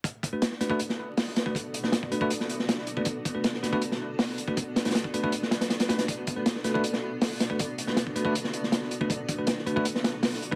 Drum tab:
HH |x---x---x---x---x-------o---x---|x---x---x---x---x---x---x---x---|x---x---x---x---x-------o---x---|x---x-xxx---x---x---x-x-x-x-x-x-|
SD |--------o-o-o-----o-----o-o-o---|------o-o---------o---o-o-o-----|--------o-o-o-----o-----o-o-----|----o-ooo---------o-o-o-o-o-o-o-|
BD |o---o---------o---------------o-|o---------o---o---------------o-|o---o---------o---------------o-|o---------o---o-----------------|

HH |x---x---x---x---x-------o---x---|x---x---x---x---x---x---x---x---|x---x---x---x---x---x---o---x---|
SD |--------o-o-o-----o-----o-o-o---|------o-o---------o---o-o-o-----|--------o-o-------o-o---o-o-----|
BD |o---o---------o---------------o-|o---------o---o---------------o-|o---o---------o---------------o-|